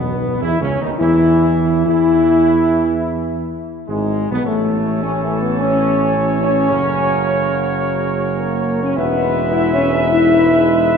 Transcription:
Already playing: B1 E2 B2 B3
0.41 E2 E3 E4
0.61 C#2 C#3 C#4
0.80 D#2 D#3 D#4
0.98 E2 E3 E4
1.85 E2 E3 E4
3.88 G#1 G#2 G#3
4.31 B1 B2 B3
4.44 A1 A2 E3 A3 A4 C#5
5.03 C#4
5.23 A3
5.42 B3
5.59 C#4
6.42 C#4
6.70 F#1 C#3 F#3 A#4
8.40 A#3
8.83 C#4
8.96 E1 G#2 G#3 B3 B4 E5
9.53 E4
9.73 C#4
9.93 D#4
10.10 E4

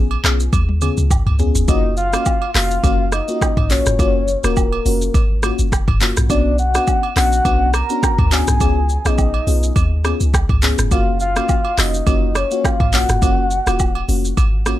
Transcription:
Already playing: A#1
0.11 high agogo
0.24 B1 B3 C#4 F4 G#4, cross-stick, clap, shaker
0.40 shaker
0.53 D#2, kick, high tom, high agogo, shaker
0.69 high tom
0.81 B3 C#4 F4 G#4, mid tom, high agogo, shaker
0.97 C#2, mid tom, shaker
1.11 kick, mid tom, low woodblock, shaker
1.26 C#2, mid tom, high agogo
1.39 B3 C#4 F4 G#4, floor tom, shaker
1.55 F1, floor tom, shaker
1.68 F#1 A#3 C#4 F4 F#4 D#5, kick, high agogo, shaker
1.97 F5, shaker
2.13 A#3 C#4 F4 F#4, cross-stick, high agogo, shaker
2.26 kick, low woodblock, shaker
2.42 high agogo
2.55 F1 A#3 C#4 F4 F#4 F5, cross-stick, clap, open hi-hat, shaker
2.71 shaker
2.84 F#1 A#3 C#4 F4 F#4, kick, high agogo, shaker
3.12 D#5, cross-stick, high agogo, shaker
3.28 A#3 C#4 F4 F#4, shaker
3.42 kick, cross-stick, low woodblock, shaker
3.57 A#1, kick, mid tom, high agogo
3.70 A#3 C#4 F4 F#4 C#5, clap, open hi-hat, shaker
3.86 F1, cross-stick, mid tom, shaker
3.99 F#1 A#3 C#4 F4 F#4, kick, high agogo, shaker
4.28 shaker
4.43 D#1 A#3 C#4 F4 F#4 A#4, cross-stick, high agogo, shaker
4.56 kick, low woodblock, shaker
4.72 high agogo
4.85 F1 A#3 C#4 F4 F#4, open hi-hat, shaker
5.02 shaker
5.14 G#1, kick, high agogo, shaker
5.43 A#3 C#4 F4 F#4, cross-stick, high agogo, shaker
5.59 F#1, shaker
5.72 kick, cross-stick, low woodblock, shaker
5.88 F#1, kick, mid tom, high agogo
6.00 A#3 C#4 F4 F#4, clap, open hi-hat, shaker
6.17 A#1, cross-stick, mid tom, shaker
6.29 B1 B3 C#4 D4 F#4 D5, kick, high agogo, shaker
6.58 F#5, shaker
6.74 B3 C#4 D4 F#4, cross-stick, high agogo, shaker
6.87 kick, low woodblock, shaker
7.03 high agogo
7.16 A#1 B3 C#4 D4 F#4 F#5, cross-stick, clap, open hi-hat, shaker
7.32 shaker
7.45 B1 B3 C#4 D4 F#4, kick, high agogo, shaker
7.74 A#5, cross-stick, high agogo, shaker
7.90 B3 C#4 D4 F#4, shaker
8.03 kick, cross-stick, low woodblock, shaker
8.18 D2, kick, mid tom, high agogo
8.31 B3 C#4 D4 F#4 G#5, clap, open hi-hat, shaker
8.47 B1, cross-stick, mid tom, shaker
8.60 C#2 B3 C#4 F4 G#4, kick, high agogo, shaker
8.89 shaker
9.05 A#1 B3 C#4 F4 G#4 D#5, cross-stick, high agogo, shaker
9.18 kick, low woodblock, shaker
9.34 high agogo
9.47 B1 B3 C#4 F4 G#4, open hi-hat, shaker
9.63 shaker
9.76 D#2, kick, high agogo, shaker
10.04 B3 C#4 F4 G#4, cross-stick, high agogo, shaker
10.20 C#2, shaker
10.34 kick, cross-stick, low woodblock, shaker
10.49 C#2, kick, mid tom, high agogo
10.62 B3 C#4 F4 G#4, clap, mid tom, open hi-hat, shaker
10.78 F1, cross-stick, mid tom, shaker
10.91 F#1 A#3 C#4 F4 F#4 F5, kick, high agogo, shaker
11.20 F5, shaker
11.36 A#3 C#4 F4 F#4, cross-stick, high agogo, shaker
11.49 kick, low woodblock, shaker
11.65 high agogo
11.78 F1 A#3 C#4 F4 F#4 D#5, cross-stick, clap, open hi-hat, shaker
11.94 shaker
12.07 F#1 A#3 C#4 F4 F#4, kick, high agogo, shaker
12.35 C#5, cross-stick, high agogo, shaker
12.51 A#3 C#4 F4 F#4, shaker
12.65 F5, kick, cross-stick, low woodblock, shaker
12.80 A#1, kick, mid tom, high agogo
12.93 A#3 C#4 F4 F#4 F#5, clap, open hi-hat, shaker
13.09 F1, cross-stick, mid tom, shaker
13.22 F#1 A#3 C#4 F4 F#4, kick, high agogo, shaker
13.51 shaker
13.67 D#1 A#3 C#4 F4 F#4, cross-stick, high agogo, shaker
13.79 kick, low woodblock, shaker
13.95 high agogo
14.08 F1 A#3 C#4 F4 F#4, open hi-hat, shaker
14.25 shaker
14.37 G#1, kick, high agogo, shaker
14.66 A#3 C#4 F4 F#4, cross-stick, high agogo, shaker

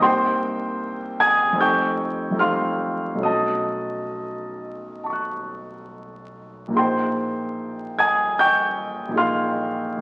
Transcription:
Already playing: C2 A#3
0.00 C4 D#4 G4 C5 G5 C6
1.20 G#5 D#6 G#6
1.52 F2 A3 C4
1.57 D#4 G4 G5 C#6 G6
2.31 F2 A3 C4
2.36 D#4 G4 F6
2.40 F5 C6
3.15 B1 A3
3.19 C#4 F#4
3.23 D#5 A5 D#6
5.04 A5 C#6
5.10 C#6 F#6
6.68 A#1 A#3
6.72 D#4 F4 G#4
6.77 C5 G5 C6
7.99 G#5 D#6 G#6
8.39 G5 C#6 G6
9.08 A#1 A#3 D#4
9.15 F4 G#4 F5 C6 F6
9.97 D#2

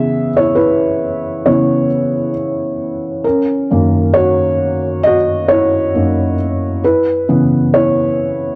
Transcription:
Already playing: C#3 E3 B3 G#4 E5
0.37 E4 C#5
0.55 E4 B4
1.46 C#3 E3 B3 E4 C#5
3.24 C#4 A#4
3.71 F#2 D#3 A#3
4.14 F#4 C#5
5.03 F#4 D#5
5.48 E4 C#5
5.94 F#2 A#3 D#4
6.84 E4 B4
7.28 C#3 E3 B3
7.74 E4 C#5

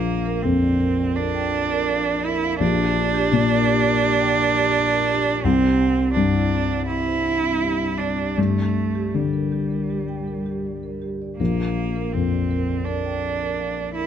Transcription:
Already playing: A#1 A#3
0.26 A#4
0.43 F2 C4 F5
0.62 D5
0.80 A#4
0.98 D5
1.15 D4 A#4
1.34 G5
1.53 D5
1.71 A#4
1.89 F5
2.07 D5
2.24 E4 A#4
2.43 F5
2.59 A#1 D4 G4
2.78 D5
3.14 G4
3.32 A#2 D5
3.50 A#4
3.68 G4
3.85 A#4
4.02 G4
4.20 G5
4.38 A#4
4.56 G4
4.91 A#4
5.09 G4
5.27 D5
5.44 C2 C4
5.63 G4
5.98 C4
6.14 G2 D4 G4
6.35 E4
6.53 C4
6.72 E4
6.86 C4 E4
7.07 C5
7.25 E4
7.43 C4
7.62 G4
7.81 E4
7.98 C4 D4
8.19 G4
8.37 G2 A3 G4
8.57 D5
8.95 G4
9.14 D3 G3 D5
9.33 A#4
9.52 G4
9.71 A#4
9.90 G4
10.08 G5
10.28 A#4
10.46 G4
10.65 D5
10.83 A#4
11.02 G4
11.22 D5
11.38 A#1 A#3 A#4
11.58 F5
11.95 A#4
12.13 F2 C4 F5
12.33 D5
12.51 A#4
12.69 D5
12.85 D4 A#4
13.05 G5
13.23 D5
13.41 A#4
13.59 F5
13.77 D5
13.94 E4 A#4

